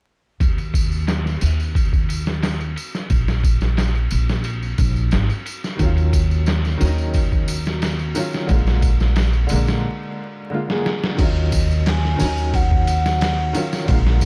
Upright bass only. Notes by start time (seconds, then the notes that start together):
0.41 D#2
1.42 D#2
3.10 A#1
4.12 A#1
4.79 A#1
5.13 G#1
5.80 D#2
6.81 D#2
8.50 A#1
9.51 A#1
11.19 D#2
12.20 D#2
13.89 A#1